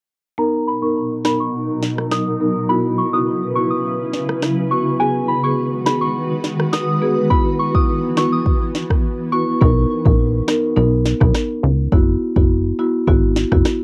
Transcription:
0.38 ambient pad B2 F#3 D#4 A#4, marimba B3 D#4 A#4, synth bell A#5
0.67 synth bell B5
0.82 marimba B3 D#4 A#4, synth bell C#6
1.25 marimba B3 D#4 A#4, synth bell B5, cross-stick, snare
1.40 synth bell C#6
1.83 snare
1.98 cross-stick
2.12 synth bell D#6, cross-stick, snare
2.40 marimba B3 D#4 A#4
2.69 ambient pad C#3 E4 B4, marimba B3 E4 F#4, synth bell B5
2.98 synth bell C#6
3.13 marimba B3 E4 F#4, synth bell D#6
3.55 marimba B3 E4 F#4, synth bell C#6
3.71 synth bell D#6
4.13 snare
4.29 cross-stick
4.42 cross-stick, snare
4.71 marimba B3 E4 F#4, synth bell C#6
5.00 ambient pad D#3 G#3 F#4 B4, marimba B3 F#4 G#4, synth bell G#5
5.28 synth bell B5
5.43 marimba B3 F#4 G#4, synth bell C#6
5.86 marimba B3 F#4 G#4, synth bell B5, cross-stick, snare
6.01 synth bell C#6
6.44 snare
6.60 cross-stick
6.73 synth bell D#6, cross-stick, snare
7.02 marimba B3 F#4 G#4
7.30 ambient pad E3 B3, marimba B3 E4 F#4, synth bell B5, kick
7.59 synth bell C#6
7.75 marimba B3 E4 F#4, synth bell D#6, kick
8.17 marimba B3 E4 F#4, synth bell C#6, cross-stick, snare
8.32 synth bell D#6
8.46 kick
8.75 snare
8.90 kick, cross-stick
9.32 marimba B3 E4 F#4, synth bell C#6
9.61 analog synth bass B1, marimba B3 D#4 A#4, kick
10.05 analog synth bass A#1, marimba B3 D#4 A#4, kick
10.48 marimba B3 D#4 A#4, cross-stick, snare
10.76 analog synth bass B1, marimba B3 D#4 A#4
11.06 snare
11.21 analog synth bass B1, marimba B3 D#4 A#4, kick, cross-stick
11.35 cross-stick, snare
11.63 analog synth bass C#2
11.92 analog synth bass F#1, marimba B3 E4 F#4, kick
12.36 analog synth bass F#1, marimba B3 E4 F#4, kick
12.79 marimba B3 E4 F#4
13.07 analog synth bass G#1, marimba B3 E4 F#4, kick
13.36 snare
13.52 analog synth bass F#1, marimba B3 E4 F#4, kick, cross-stick
13.65 cross-stick, snare

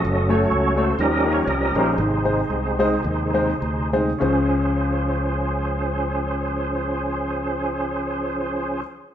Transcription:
Already playing: tonewheel organ F#4 A4 D#5
0.05 fingered electric bass F#1, tonewheel organ F#3 A3 C#4
0.29 upright piano A3 C#4 F#4 A4 C#5, tonewheel organ F#4 A4 C#5
0.51 fingered electric bass C#2
0.76 upright piano A3 C#4 F#4 A4 C#5, tonewheel organ C5
0.99 fingered electric bass D#2, upright piano D#3, tonewheel organ F3 G3 C#4 G4 A#4 D#5
1.24 upright piano A#3 C#4 D#4 G4 A#4
1.32 tonewheel organ C#5
1.47 fingered electric bass C2, tonewheel organ D#5
1.75 fingered electric bass A#1, upright piano A#3 C#4 D#4 G4 A#4, tonewheel organ D#4 G#4 C5
1.98 fingered electric bass G#1, upright piano G#2, tonewheel organ C3 G#3 C4
2.24 upright piano G#3 C4 D#4 G#4 C5
2.50 fingered electric bass C2
2.79 upright piano G#3 C4 D#4 G#4 C5
3.03 fingered electric bass D#2, tonewheel organ D#3 G#3 C4
3.34 upright piano G#3 C4 D#4 G#4 C5
3.62 fingered electric bass D2
3.93 upright piano G#3 C4 D#4 G#4 C5
4.18 upright piano C#2 C#4 F4 G#4 C5, fingered electric bass C#2, tonewheel organ F3 C#4 G#4 C5

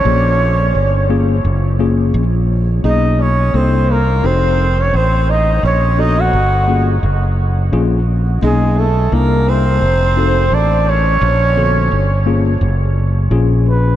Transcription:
Already playing: tenor saxophone C#4, flugelhorn C#5
0.05 fretless electric bass A#1, tine electric piano A#3 C#4 F4 G#4
0.75 fretless electric bass G1
1.09 tine electric piano A#3 C#4 F4 G#4
1.45 fretless electric bass F#1
1.79 tine electric piano A#3 C#4 F4 G#4
2.14 fretless electric bass A#1
2.84 fretless electric bass B1, tine electric piano A#3 C#4 D#4 G#4, tenor saxophone D#4, flugelhorn D#5
3.19 tenor saxophone C#4, flugelhorn C#5
3.53 fretless electric bass C2, tine electric piano A#3 D4 E4 A4, tenor saxophone C4, flugelhorn C5
3.89 tenor saxophone A#3, flugelhorn A#4
4.23 fretless electric bass F1, tine electric piano C4 D#4 F#4 A4, tenor saxophone C4, flugelhorn C5
4.79 tenor saxophone C#4, flugelhorn C#5
4.94 fretless electric bass A1, tenor saxophone C4, flugelhorn C5
5.29 tenor saxophone D#4, flugelhorn D#5
5.63 fretless electric bass A#1, tenor saxophone C#4, flugelhorn C#5
5.98 tine electric piano B3 D4 F#4 A4, tenor saxophone D#4, flugelhorn D#5
6.19 tenor saxophone F#4, flugelhorn F#5
6.33 fretless electric bass G1
6.68 tine electric piano A#3 C#4 F4 G#4
7.03 fretless electric bass F#1
7.72 fretless electric bass A#1, tine electric piano A#3 C#4 F4 G#4
8.42 fretless electric bass B1, tenor saxophone G#3, tine electric piano A#3 C#4 D#4 G#4, flugelhorn G#4
8.77 tenor saxophone A3, flugelhorn A4
9.12 fretless electric bass C2, tine electric piano A#3 D4 E4 A#4, tenor saxophone A#3, flugelhorn A#4
9.48 tenor saxophone C4, flugelhorn C5
9.82 fretless electric bass F1
10.17 tine electric piano C4 D#4 F#4 A4
10.52 fretless electric bass A1, tenor saxophone D4, flugelhorn D5
10.88 tenor saxophone C#4, flugelhorn C#5
11.21 fretless electric bass A#1
11.56 tine electric piano D3 B3 F#4 A4
11.91 fretless electric bass G1
12.26 tine electric piano A#3 C#4 F4 G#4
12.61 fretless electric bass F#1
13.31 fretless electric bass A#1, tine electric piano A#2 C#4 F4 G#4
13.69 flugelhorn B4

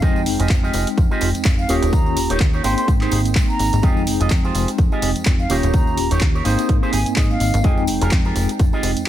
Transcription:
0.02 analog synth bass F2, tine electric piano G#3 C4 D#4 G5, clean electric guitar F4 G4 G#4 D#5, kick, closed hi-hat, tambourine
0.16 tambourine
0.26 analog synth bass F1, open hi-hat, tambourine
0.39 analog synth bass F1, clean electric guitar F4 G4 G#4 D#5, closed hi-hat, tambourine
0.49 analog synth bass F2, kick, clap, closed hi-hat, tambourine
0.63 clean electric guitar F4 G4 G#4 D#5, tambourine
0.73 analog synth bass F1, open hi-hat, tambourine
0.87 closed hi-hat, tambourine
0.98 analog synth bass F2, kick, closed hi-hat, tambourine
1.11 clean electric guitar F4 G4 G#4 D#5, tambourine
1.21 analog synth bass F1, open hi-hat, tambourine
1.35 analog synth bass F2, closed hi-hat, tambourine
1.45 analog synth bass F2, muted clean electric guitar stroke, kick, clap, closed hi-hat, tambourine
1.59 flute F5, muted clean electric guitar stroke, tambourine
1.68 analog synth bass D#1, tine electric piano A#3 C#4 F4 G4, clean electric guitar D#4 G4 A#4 C#5, open hi-hat, tambourine
1.82 analog synth bass D#1, closed hi-hat, tambourine
1.93 analog synth bass D#2, flute A#5, kick, closed hi-hat, tambourine
2.06 tambourine
2.16 analog synth bass D#1, open hi-hat, tambourine
2.30 analog synth bass D#1, clean electric guitar D#4 G4 A#4 C#5, closed hi-hat, tambourine
2.40 analog synth bass D#2, kick, clap, closed hi-hat, tambourine
2.54 clean electric guitar D#4 G4 A#4 C#5, tambourine
2.63 analog synth bass G#1, tine electric piano A#3 C4 D#4 G5, clean electric guitar D#4 G4 G#4 C5, flute C6, open hi-hat, tambourine
2.77 flute C6, closed hi-hat, tambourine
2.88 analog synth bass G#2, kick, closed hi-hat, tambourine
3.01 clean electric guitar D#4 G4 G#4 C5, clap, tambourine
3.11 analog synth bass G#1, open hi-hat, tambourine
3.25 closed hi-hat, tambourine
3.35 analog synth bass G#2, muted clean electric guitar stroke, kick, clap, closed hi-hat, tambourine
3.49 flute A#5, muted clean electric guitar stroke, tambourine
3.59 analog synth bass G#1, open hi-hat, tambourine
3.73 analog synth bass G#1, closed hi-hat, tambourine
3.82 analog synth bass F2, tine electric piano G#3 C4 D#4 G5, clean electric guitar F4 G4 G#4 D#5, kick, closed hi-hat, tambourine
3.97 tambourine
4.07 analog synth bass F1, open hi-hat, tambourine
4.20 analog synth bass F1, clean electric guitar F4 G4 G#4 D#5, closed hi-hat, tambourine
4.30 analog synth bass F2, kick, clap, closed hi-hat, tambourine
4.44 clean electric guitar F4 G4 G#4 C5, tambourine
4.55 analog synth bass F1, open hi-hat, tambourine
4.68 closed hi-hat, tambourine
4.78 analog synth bass F2, kick, closed hi-hat, tambourine
4.92 clean electric guitar F4 G4 G#4 D#5, tambourine
5.02 analog synth bass F1, open hi-hat, tambourine
5.15 analog synth bass F2, closed hi-hat, tambourine
5.25 analog synth bass F2, muted clean electric guitar stroke, kick, clap, closed hi-hat, tambourine
5.40 flute F5, muted clean electric guitar stroke, tambourine
5.49 analog synth bass D#1, tine electric piano A#3 C#4 F4 G4, clean electric guitar D#4 G4 A#4 C#5, open hi-hat, tambourine
5.63 analog synth bass D#1, closed hi-hat, tambourine
5.74 analog synth bass D#2, flute A#5, kick, closed hi-hat, tambourine
5.87 tambourine
5.97 analog synth bass D#1, open hi-hat, tambourine
6.11 analog synth bass D#1, clean electric guitar D#4 G4 A#4 C#5, closed hi-hat, tambourine
6.21 analog synth bass D#2, kick, clap, closed hi-hat, tambourine
6.35 clean electric guitar D#4 G4 A#4 C#5, tambourine
6.45 analog synth bass G#1, tine electric piano A#3 C4 D#4, clean electric guitar D#4 G4 G#4 C5, open hi-hat, tambourine
6.58 closed hi-hat, tambourine
6.69 analog synth bass G#2, kick, closed hi-hat, tambourine
6.83 clean electric guitar D#4 G4 G#4 C5, tambourine
6.93 analog synth bass G#1, flute G#5, clean electric guitar G#5, open hi-hat, tambourine
7.06 analog synth bass G#2, closed hi-hat, tambourine
7.16 analog synth bass G#2, clean electric guitar D#5, muted clean electric guitar stroke, kick, clap, closed hi-hat, tambourine
7.30 flute F5, muted clean electric guitar stroke, tambourine
7.40 analog synth bass G#1, open hi-hat, tambourine
7.54 analog synth bass G#1, closed hi-hat, tambourine
7.63 analog synth bass F2, tine electric piano G#3 C4 D#4 G5, clean electric guitar F4 G4 G#4 D#5, kick, closed hi-hat, tambourine
7.77 tambourine
7.87 analog synth bass F1, open hi-hat, tambourine
8.02 analog synth bass F1, clean electric guitar F4 G4 G#4 A#4, closed hi-hat, tambourine
8.11 analog synth bass F2, kick, clap, closed hi-hat, tambourine
8.25 clean electric guitar F4 G4 G#4 A#4, tambourine
8.36 analog synth bass F1, open hi-hat, tambourine
8.49 closed hi-hat, tambourine
8.59 analog synth bass F2, kick, closed hi-hat, tambourine
8.73 clean electric guitar F4 G4 G#4 D#5, tambourine
8.83 analog synth bass F1, open hi-hat, tambourine
8.96 analog synth bass F2, closed hi-hat, tambourine

